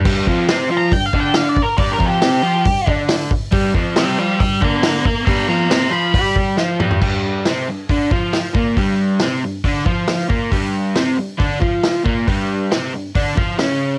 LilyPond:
<<
  \new Staff \with { instrumentName = "Lead electric guitar" } { \time 4/4 \key c \lydian \tempo 4 = 138 r4 \tuplet 3/2 { r4 bes''8 g''8 f''8 g''8 f''8 d''8 bes'8 } | \tuplet 3/2 { d''8 bes'8 g'8~ } g'4. r4. | r4 <d'' g''>8 <d'' g''>8 <d'' g''>8 <f'' bes''>8 <f'' bes''>8 <f'' bes''>8 | <bes'' d'''>8 <bes'' d'''>8 <bes'' d'''>8 b''4 r4. |
r1 | r1 | r1 | r1 | }
  \new Staff \with { instrumentName = "Overdriven electric guitar" } { \clef bass \time 4/4 \key c \lydian <g, g>8 <f, f>8 <c c'>8 <f f'>8 g,8 <d d'>4 r8 | <g, g>8 <f, f>8 <c c'>8 <f f'>8 g,8 <d d'>4 r8 | <g, g>8 <f, f>8 <c c'>8 <f f'>8 g,8 <d d'>4 r8 | <g, g>8 <f, f>8 <c c'>8 <f f'>8 <g g'>4 <f f'>8 <g, g>8 |
<g, g>4 <c c'>8 g,8 <d d'>8 <f f'>4 <bes, bes>8 | <g, g>4 <c c'>8 g,8 <d d'>8 <f f'>4 <bes, bes>8 | <g, g>4 <c c'>8 g,8 <d d'>8 <f f'>4 <bes, bes>8 | <g, g>4 <c c'>8 g,8 <d d'>8 <f f'>8 <cis cis'>4 | }
  \new DrumStaff \with { instrumentName = "Drums" } \drummode { \time 4/4 <cymc hho bd>8 bd8 <hho sn>4 <hho bd>8 bd8 <hho sn>8 bd8 | <hho bd>8 bd8 <hho sn>4 <hho bd>8 bd8 <hho sn>8 bd8 | <hho bd>8 bd8 <hho sn>4 <hho bd>8 bd8 <hho sn>8 bd8 | <hho bd>4 <hho sn>4 <hho bd>8 bd8 sn8 toml16 tomfh16 |
<cymc bd>4 <hho sn>4 <hho bd>8 bd8 <hho sn>8 bd8 | <hho bd>4 <hho sn>4 <hho bd>8 bd8 <hho sn>8 bd8 | <hho bd>4 <hho sn>4 <hho bd>8 bd8 <hho sn>8 bd8 | <hho bd>4 <hho sn>4 <hho bd>8 bd8 <hho sn>4 | }
>>